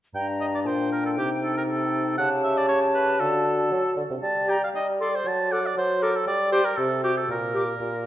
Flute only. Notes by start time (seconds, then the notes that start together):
0.15 A#5
0.66 G5
2.18 A5
4.50 A#5
5.00 C6
5.52 D6
6.02 D6
6.53 D6
7.03 D6
7.55 D6